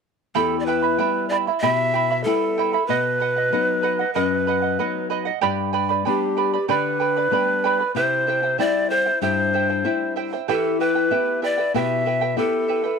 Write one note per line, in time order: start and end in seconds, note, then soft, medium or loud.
0.35 0.97 E2 medium
0.35 0.67 E4 medium
0.35 0.67 G4 medium
0.35 0.58 A4 medium
0.35 0.67 E5 medium
0.35 0.66 G5 medium
0.35 0.67 B5 medium
0.60 0.67 D5 medium
0.66 0.83 E4 soft
0.66 1.28 B4 medium
0.66 0.82 E5 medium
0.66 0.83 G5 soft
0.66 0.81 B5 medium
0.82 0.98 E4 soft
0.82 0.98 E5 soft
0.82 0.98 B5 soft
0.98 1.49 G3 soft
0.98 1.49 B3 soft
0.98 1.30 E4 soft
0.98 1.50 E4 soft
0.98 1.31 E5 medium
0.98 1.30 G5 soft
0.98 1.31 B5 medium
1.29 1.47 E4 soft
1.29 1.36 D5 medium
1.29 1.47 E5 medium
1.29 1.46 G5 soft
1.29 1.46 B5 soft
1.47 1.62 E4 soft
1.47 1.62 E5 soft
1.47 1.62 B5 soft
1.60 2.24 B2 medium
1.60 1.93 E4 medium
1.60 1.94 G4 medium
1.60 2.25 E5 loud
1.60 1.94 E5 medium
1.60 1.93 G5 medium
1.60 1.94 B5 medium
1.94 2.10 E4 soft
1.94 2.10 E5 soft
1.94 2.09 G5 soft
1.94 2.10 B5 medium
2.11 2.26 E4 soft
2.11 2.26 E5 soft
2.11 2.26 B5 soft
2.24 2.76 G3 soft
2.24 2.76 B3 soft
2.24 2.76 E4 soft
2.24 2.57 E4 medium
2.24 2.88 A4 medium
2.24 2.58 E5 medium
2.24 2.57 G5 medium
2.28 2.58 B5 medium
2.58 2.73 E4 medium
2.58 2.73 E5 medium
2.58 2.73 G5 medium
2.58 2.72 B5 medium
2.73 2.89 E4 soft
2.73 2.89 E5 soft
2.73 2.89 B5 soft
2.87 3.50 B2 medium
2.87 4.13 B4 medium
2.87 3.19 B4 medium
2.87 3.20 D#5 medium
2.87 3.21 F#5 medium
3.20 3.36 B4 medium
3.20 3.37 D#5 medium
3.20 3.35 F#5 soft
3.37 3.52 D#5 soft
3.37 3.52 F#5 soft
3.52 4.03 F#3 soft
3.52 4.03 B3 soft
3.52 4.03 D#4 soft
3.52 3.82 B4 medium
3.52 3.82 D#5 medium
3.52 3.83 F#5 medium
3.83 3.99 B4 medium
3.83 3.99 D#5 medium
3.83 3.98 F#5 medium
3.99 4.15 D#5 soft
3.99 4.15 F#5 soft
4.14 4.77 F#2 medium
4.14 5.06 B4 medium
4.14 4.46 B4 medium
4.14 4.47 D#5 medium
4.14 4.47 F#5 medium
4.47 4.63 B4 soft
4.47 4.62 D#5 medium
4.47 4.61 F#5 medium
4.62 4.78 D#5 soft
4.62 4.78 F#5 soft
4.79 5.30 F#3 soft
4.79 5.30 B3 soft
4.79 5.30 D#4 soft
4.79 5.09 B4 medium
4.79 5.09 D#5 medium
4.79 5.11 F#5 medium
5.10 5.26 B4 medium
5.10 5.26 D#5 medium
5.10 5.24 F#5 medium
5.25 5.42 D#5 soft
5.25 5.41 F#5 medium
5.41 6.04 G2 medium
5.41 5.73 G4 medium
5.41 5.72 B4 medium
5.41 5.72 D5 medium
5.41 5.72 G5 medium
5.41 5.73 B5 medium
5.73 5.89 B4 medium
5.73 5.89 D5 medium
5.73 5.89 G5 medium
5.73 5.88 B5 medium
5.89 6.05 B4 soft
5.89 6.05 D5 soft
5.89 6.05 B5 soft
6.05 6.57 G3 soft
6.05 6.57 B3 soft
6.05 6.57 D4 medium
6.05 6.66 G4 medium
6.05 6.36 B4 medium
6.05 6.36 D5 medium
6.05 6.36 G5 medium
6.05 6.37 B5 medium
6.37 6.53 B4 soft
6.37 6.53 D5 medium
6.37 6.53 G5 soft
6.37 6.52 B5 medium
6.53 6.68 B4 soft
6.53 6.68 D5 soft
6.53 6.69 B5 soft
6.68 7.30 D3 medium
6.68 7.00 G4 medium
6.68 6.99 B4 medium
6.68 7.92 B4 medium
6.68 7.00 D5 medium
6.68 6.98 G5 medium
6.68 7.00 B5 medium
7.00 7.16 B4 soft
7.00 7.16 D5 soft
7.00 7.16 G5 soft
7.00 7.15 B5 medium
7.17 7.32 B4 soft
7.17 7.32 D5 soft
7.17 7.32 B5 soft
7.31 7.82 G3 soft
7.31 7.82 B3 soft
7.31 7.82 D4 soft
7.31 7.64 B4 medium
7.31 7.63 D5 medium
7.31 7.63 G5 medium
7.31 7.64 B5 medium
7.64 7.80 B4 medium
7.64 7.79 D5 medium
7.64 7.80 G5 medium
7.64 7.78 B5 medium
7.79 7.96 B4 soft
7.79 7.96 D5 soft
7.79 7.95 B5 soft
7.95 8.56 C3 medium
7.95 8.27 E4 medium
7.95 8.27 G4 medium
7.95 8.61 C5 medium
7.95 8.27 C5 medium
7.95 8.26 E5 medium
7.95 8.28 G5 medium
8.27 8.43 E4 medium
8.27 8.42 C5 medium
8.27 8.43 E5 soft
8.27 8.42 G5 medium
8.43 8.57 E4 soft
8.43 8.58 C5 soft
8.43 8.58 G5 soft
8.58 9.09 G3 soft
8.58 9.09 C4 soft
8.58 8.90 E4 medium
8.58 9.10 E4 soft
8.58 8.90 C5 medium
8.58 8.92 D5 medium
8.58 8.90 E5 medium
8.58 8.91 G5 medium
8.90 9.06 E4 medium
8.90 9.21 C5 medium
8.90 9.06 C5 soft
8.90 9.06 E5 soft
8.90 9.04 G5 soft
9.06 9.22 E4 soft
9.06 9.22 C5 soft
9.06 9.21 G5 soft
9.22 9.83 G2 medium
9.22 9.53 E4 medium
9.22 9.53 G4 medium
9.22 10.12 C5 medium
9.22 9.53 C5 medium
9.22 9.52 E5 medium
9.22 9.54 G5 medium
9.53 9.69 E4 soft
9.53 9.69 C5 soft
9.53 9.69 E5 soft
9.53 9.68 G5 medium
9.69 9.84 E4 soft
9.69 9.85 C5 soft
9.69 9.85 G5 soft
9.84 10.35 G3 soft
9.84 10.35 C4 soft
9.84 10.15 E4 medium
9.84 10.35 E4 soft
9.84 10.16 C5 medium
9.84 10.15 E5 medium
9.84 10.16 G5 medium
10.16 10.32 E4 medium
10.16 10.32 C5 medium
10.16 10.32 E5 medium
10.16 10.32 G5 medium
10.33 10.48 E4 soft
10.33 10.48 C5 soft
10.33 10.48 G5 soft
10.48 11.09 E3 medium
10.48 10.79 E4 medium
10.48 10.80 G4 medium
10.48 10.82 A4 medium
10.48 10.80 B4 medium
10.48 10.79 E5 medium
10.48 10.80 G5 medium
10.80 10.96 E4 medium
10.80 11.43 B4 medium
10.80 10.95 B4 medium
10.80 10.96 E5 soft
10.80 10.94 G5 medium
10.95 11.10 E4 soft
10.95 11.10 B4 soft
10.95 11.11 G5 soft
11.11 11.61 B3 soft
11.11 11.41 E4 medium
11.11 11.62 E4 soft
11.11 11.62 G4 soft
11.11 11.42 B4 medium
11.11 11.41 E5 soft
11.11 11.43 G5 medium
11.42 11.58 E4 soft
11.42 11.58 B4 medium
11.42 11.73 D5 medium
11.42 11.58 E5 soft
11.42 11.57 G5 medium
11.58 11.74 E4 soft
11.58 11.74 B4 soft
11.58 11.74 G5 soft
11.74 12.35 B2 medium
11.74 12.05 E4 medium
11.74 12.06 G4 medium
11.74 12.05 B4 medium
11.74 12.04 E5 medium
11.74 12.40 E5 medium
11.74 12.06 G5 medium
12.06 12.21 E4 soft
12.06 12.21 B4 medium
12.06 12.21 E5 soft
12.06 12.20 G5 soft
12.21 12.36 E4 soft
12.21 12.37 B4 soft
12.21 12.37 G5 soft
12.36 12.87 B3 soft
12.36 12.68 E4 medium
12.36 12.88 E4 soft
12.36 12.88 G4 soft
12.36 12.99 A4 medium
12.36 12.68 B4 medium
12.36 12.67 E5 soft
12.36 12.69 G5 medium
12.68 12.84 E4 medium
12.68 12.84 B4 medium
12.68 12.84 E5 soft
12.68 12.82 G5 soft
12.84 12.99 E4 soft
12.84 12.98 B4 soft
12.84 12.99 G5 soft